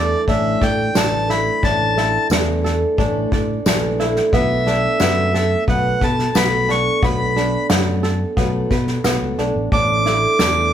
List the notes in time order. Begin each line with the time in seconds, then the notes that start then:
Already playing: E2 E3 A3 D4 E4 A4 D5
0.28 A1 A2 D3 E3 A3 D4 E4 A4 E5, kick, snare
0.61 A2 E3 A3 A4 D5 G5, kick, snare
0.94 A1 E3 A3 D4 E4 A5, snare, tambourine
1.28 E3 A3 E4 A4 B5, snare
1.62 A1 A2 D3 E3 A3 D4 E4 A4 A5, kick, snare
1.96 E3 A3 E4 A4, snare
2.29 E2 E3 A3 D4 E4 A4, snare, tambourine
2.63 E3 A3 E4 A4, snare
2.97 A1 A2 D3 E3 A3 D4 E4 A4, kick, snare
3.31 A2 E3 A3 E4 A4 D5, kick, snare
3.65 A#1 E3 A3 D4 E4 A4, snare, tambourine
4.00 E3 A3 E4 A4, snare
4.16 snare
4.33 B1 B2 F#3 A3 B3 D4 A4 E5, kick, snare
4.66 A3 D4 A4, snare
5.00 F#2 F#3 A3 B3 A4, snare, tambourine
5.33 A3 D4 A4, snare
5.67 B1 B2 F#3 A3 B3 D4 A4 F#5, kick, snare
6.01 B2 A3 D4 A4 B4 A5, kick, snare
6.19 snare
6.35 B1 F#3 A3 B3 D4 A4 B5, snare, tambourine
6.68 A3 D4 A4 C#6, snare
7.02 B1 B2 F#3 A3 B3 D4 A4 B5, kick, snare
7.35 A3 D4 A4, snare
7.70 F#2 F#3 A3 B3 D4, snare, tambourine
8.03 A3 D4 A4, snare
8.37 B1 B2 F#3 A3 B3 D4 A4, kick, snare
8.70 B2 A3 D4 A4 B4, kick, snare
8.87 snare
9.04 B1 F#3 A3 B3 D4 A4, snare, tambourine
9.22 C#2
9.38 B1 A3 D4 A4, snare
9.56 A1
9.72 A1 A2 D3 E3 A3 D4 A4 D6, kick, snare
10.06 E3 A3 D4 E4 A4, snare
10.39 E2 A3 D4, snare, tambourine